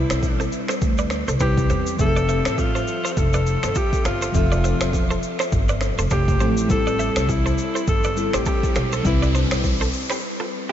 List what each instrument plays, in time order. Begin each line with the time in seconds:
Already playing: fm electric piano G3 C4 E4 B4, alto saxophone E4
0.10 upright bass B1, finger snap, cross-stick, shaker
0.23 kick, shaker
0.40 clean electric guitar A4 C5, shaker
0.52 shaker
0.68 clean electric guitar A4 C5, finger snap, cross-stick, shaker
0.82 upright bass D2, kick, shaker
0.98 clean electric guitar B4 D5, shaker
1.10 finger snap, cross-stick, shaker
1.28 upright bass C2, clean electric guitar A4 C5, shaker
1.39 upright bass C2, fm electric piano G3 C4 E4 B4, clean electric guitar G4 B4, alto saxophone G4, finger snap, kick, cross-stick, shaker
1.58 kick, shaker
1.70 upright bass E2, clean electric guitar A4 C5, shaker
1.87 shaker
1.97 upright bass F1, fm electric piano F3 C4 E5, alto saxophone A4, kick, shaker
2.02 fm electric piano G#4
2.08 fm electric piano A4
2.16 clean electric guitar B4 D5, shaker
2.29 clean electric guitar C5 E5, shaker
2.45 finger snap, cross-stick, shaker
2.58 alto saxophone F4, kick, shaker
2.75 clean electric guitar A4 C5, shaker
2.88 shaker
3.05 clean electric guitar A4 C5, shaker
3.12 alto saxophone C5
3.17 upright bass F1, alto saxophone A4, kick, shaker
3.33 clean electric guitar B4 D5, shaker
3.47 shaker
3.63 upright bass G1, clean electric guitar A4 C5, finger snap, cross-stick, shaker
3.75 clean electric guitar F4 A4, alto saxophone G4, kick, shaker
3.93 kick, shaker
4.05 upright bass G1, clean electric guitar F4 A4, alto saxophone F4, finger snap, cross-stick, shaker
4.22 clean electric guitar A4 C5, shaker
4.32 upright bass F1, fm electric piano F3 C4 E5, alto saxophone F4, kick, shaker
4.37 fm electric piano A4
4.52 clean electric guitar B4 D5, shaker
4.64 clean electric guitar C5 E5, shaker
4.81 upright bass E1, finger snap, cross-stick, shaker
4.93 kick, shaker
5.11 clean electric guitar A4 C5, shaker
5.23 shaker
5.39 clean electric guitar A4 C5, finger snap, cross-stick, shaker
5.52 upright bass G1, kick, shaker
5.69 clean electric guitar B4 D5, shaker
5.81 finger snap, cross-stick, shaker
5.99 upright bass F1, clean electric guitar A4 C5, shaker
6.10 upright bass F1, clean electric guitar F4 A4, alto saxophone G4, finger snap, kick, cross-stick, shaker
6.28 kick, shaker
6.39 upright bass A1, fm electric piano F3 C4 E4 A4, clean electric guitar A4 C5, shaker
6.57 shaker
6.68 upright bass A1, fm electric piano G3 C4 E4, alto saxophone A4, kick, riser, shaker
6.73 fm electric piano A4
6.87 clean electric guitar B4 D5, shaker
6.99 clean electric guitar C5 E5, shaker
7.16 upright bass C2, finger snap, cross-stick, shaker
7.29 alto saxophone E4, kick, shaker
7.46 clean electric guitar A4 C5, shaker
7.58 shaker
7.75 clean electric guitar A4 C5, shaker
7.88 upright bass G1, alto saxophone A4, kick, shaker
8.04 clean electric guitar B4 D5, shaker
8.16 fm electric piano G3 C4 E4 A4, shaker
8.33 upright bass A1, alto saxophone G4, clean electric guitar A4 C5, finger snap, cross-stick, shaker
8.46 clean electric guitar E4 A4, alto saxophone G4, kick, shaker
8.63 kick, shaker
8.75 upright bass B1, clean electric guitar F4 A4, finger snap, cross-stick, shaker
8.93 clean electric guitar A4 C5, alto saxophone A4, shaker
9.03 upright bass C2, fm electric piano G3 C4 E4, alto saxophone E4, kick, shaker
9.08 fm electric piano B4
9.22 clean electric guitar B4 D5, shaker
9.35 clean electric guitar A4 C5, shaker
9.51 upright bass B1, finger snap, cross-stick, shaker
9.64 kick, shaker
9.81 clean electric guitar A4 C5, shaker
9.93 shaker
10.10 clean electric guitar G4 B4, finger snap, cross-stick, shaker
10.40 clean electric guitar F4 A4